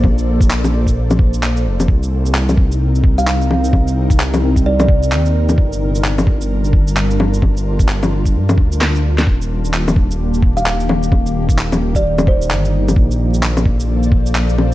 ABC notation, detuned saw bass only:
X:1
M:4/4
L:1/8
Q:"Swing 16ths" 1/4=130
K:Gm
V:1 name="Detuned saw bass" clef=bass
B,,,6- B,,, F,,, | C,,8 | C,,6 E,,2 | G,,,8 |
G,,,4 G,, D,,3 | E,,,8 | E,,,6 G,,,2 | B,,,8 |]